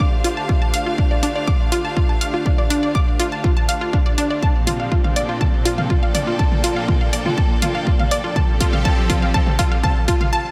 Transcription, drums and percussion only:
0.00 kick loud
0.24 open hi-hat medium
0.49 kick loud
0.74 open hi-hat loud
0.98 kick loud
1.23 open hi-hat loud
1.47 kick loud
1.72 open hi-hat loud
1.97 kick loud
2.21 open hi-hat medium
2.46 kick loud
2.70 open hi-hat loud
2.95 kick loud
3.20 open hi-hat medium
3.44 kick loud
3.69 open hi-hat loud
3.93 kick loud
4.18 open hi-hat loud
4.43 kick loud
4.67 open hi-hat loud
4.67 mid tom medium
4.92 kick loud
5.04 mid tom medium
5.16 open hi-hat medium
5.41 kick loud
5.41 mid tom medium
5.65 open hi-hat loud
5.78 mid tom medium
5.90 kick loud
6.15 open hi-hat medium
6.15 mid tom medium
6.39 kick loud
6.52 mid tom medium
6.64 open hi-hat loud
6.88 kick loud
6.88 mid tom medium
7.13 open hi-hat medium
7.26 mid tom medium
7.38 kick loud
7.62 open hi-hat loud
7.62 mid tom medium
7.87 kick loud
7.99 mid tom medium
8.11 open hi-hat medium
8.36 kick loud
8.36 mid tom loud
8.60 kick loud
8.60 open hi-hat loud
8.73 mid tom loud
8.85 kick loud
9.10 kick loud
9.10 open hi-hat medium
9.10 mid tom medium
9.34 kick loud
9.47 mid tom loud
9.59 kick loud
9.59 open hi-hat loud
9.83 kick loud
9.83 mid tom medium
10.08 kick loud
10.08 open hi-hat medium
10.21 mid tom medium

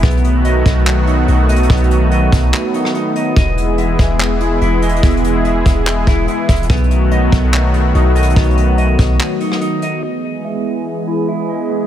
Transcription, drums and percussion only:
0.03 kick loud
0.03 closed hi-hat medium
0.10 closed hi-hat medium
0.17 closed hi-hat soft
0.24 closed hi-hat medium
0.45 closed hi-hat medium
0.66 kick medium
0.66 closed hi-hat medium
0.87 clap loud
0.87 closed hi-hat medium
1.07 closed hi-hat medium
1.28 closed hi-hat medium
1.49 closed hi-hat medium
1.56 closed hi-hat medium
1.63 closed hi-hat medium
1.70 kick loud
1.70 closed hi-hat medium
1.77 closed hi-hat medium
1.84 closed hi-hat soft
1.91 closed hi-hat medium
2.11 closed hi-hat medium
2.32 kick medium
2.32 closed hi-hat medium
2.53 clap loud
2.53 closed hi-hat medium
2.74 closed hi-hat medium
2.85 cross-stick loud
2.95 closed hi-hat medium
3.16 closed hi-hat medium
3.36 kick loud
3.36 closed hi-hat medium
3.58 closed hi-hat medium
3.78 closed hi-hat medium
3.99 kick loud
3.99 closed hi-hat medium
4.20 clap loud
4.41 closed hi-hat medium
4.61 closed hi-hat medium
4.82 closed hi-hat medium
4.89 closed hi-hat medium
4.96 closed hi-hat medium
5.03 kick loud
5.03 closed hi-hat medium
5.10 closed hi-hat medium
5.17 closed hi-hat medium
5.24 closed hi-hat medium
5.45 closed hi-hat medium
5.66 kick medium
5.66 closed hi-hat medium
5.86 clap loud
5.86 closed hi-hat medium
6.07 kick medium
6.07 closed hi-hat medium
6.28 closed hi-hat medium
6.49 kick loud
6.49 closed hi-hat medium
6.56 closed hi-hat medium
6.63 closed hi-hat medium
6.70 kick loud
6.70 closed hi-hat medium
6.77 closed hi-hat medium
6.84 closed hi-hat soft
6.91 closed hi-hat medium
7.11 closed hi-hat medium
7.32 kick loud
7.32 closed hi-hat medium
7.54 clap loud
7.74 closed hi-hat medium
7.95 closed hi-hat medium
8.16 closed hi-hat medium
8.22 closed hi-hat medium
8.29 closed hi-hat medium
8.36 kick loud
8.36 closed hi-hat medium
8.43 closed hi-hat medium
8.50 closed hi-hat soft
8.57 closed hi-hat medium
8.78 closed hi-hat medium
8.99 kick medium
8.99 closed hi-hat medium
9.20 clap loud
9.20 closed hi-hat medium
9.41 closed hi-hat medium
9.52 cross-stick loud
9.61 closed hi-hat medium
9.82 closed hi-hat medium

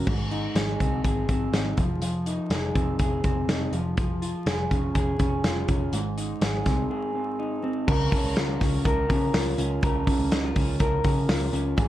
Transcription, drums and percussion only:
0.07 kick loud
0.07 crash medium
0.31 closed hi-hat medium
0.55 snare loud
0.55 closed hi-hat medium
0.80 kick medium
0.80 closed hi-hat medium
1.04 kick medium
1.04 closed hi-hat medium
1.29 kick medium
1.29 closed hi-hat medium
1.53 snare medium
1.53 closed hi-hat medium
1.77 kick medium
1.77 closed hi-hat medium
2.02 closed hi-hat medium
2.26 closed hi-hat medium
2.50 snare loud
2.50 closed hi-hat medium
2.75 kick medium
2.75 closed hi-hat medium
2.99 kick medium
2.99 closed hi-hat medium
3.24 kick medium
3.24 closed hi-hat medium
3.49 snare medium
3.49 closed hi-hat medium
3.73 closed hi-hat medium
3.97 kick loud
3.97 closed hi-hat medium
4.22 closed hi-hat medium
4.46 snare loud
4.46 closed hi-hat medium
4.71 kick medium
4.71 closed hi-hat medium
4.95 kick medium
4.95 closed hi-hat medium
5.19 kick medium
5.19 closed hi-hat medium
5.44 snare loud
5.44 closed hi-hat medium
5.68 kick medium
5.68 closed hi-hat medium
5.93 closed hi-hat medium
6.18 closed hi-hat medium
6.42 snare loud
6.42 closed hi-hat medium
6.66 kick medium
6.66 snare soft
6.66 closed hi-hat medium
7.88 kick loud
7.88 crash loud
8.12 kick medium
8.12 hi-hat pedal medium
8.12 open hi-hat medium
8.36 snare loud
8.36 hi-hat pedal medium
8.36 open hi-hat medium
8.61 kick medium
8.61 snare soft
8.61 hi-hat pedal medium
8.61 open hi-hat medium
8.85 kick loud
8.85 hi-hat pedal medium
8.85 open hi-hat medium
9.10 kick medium
9.10 hi-hat pedal medium
9.10 open hi-hat medium
9.34 snare medium
9.34 hi-hat pedal medium
9.34 open hi-hat medium
9.58 hi-hat pedal medium
9.58 open hi-hat medium
9.83 kick loud
9.83 hi-hat pedal medium
9.83 open hi-hat medium
10.07 kick medium
10.07 hi-hat pedal medium
10.07 open hi-hat medium
10.32 snare loud
10.32 hi-hat pedal medium
10.32 open hi-hat medium
10.56 kick medium
10.56 hi-hat pedal medium
10.56 open hi-hat medium
10.80 kick medium
10.80 hi-hat pedal medium
10.80 open hi-hat medium
11.04 kick medium
11.04 hi-hat pedal medium
11.04 open hi-hat medium
11.29 snare medium
11.29 hi-hat pedal medium
11.29 open hi-hat medium
11.53 hi-hat pedal medium
11.53 open hi-hat medium
11.78 kick loud
11.78 hi-hat pedal medium
11.78 open hi-hat loud

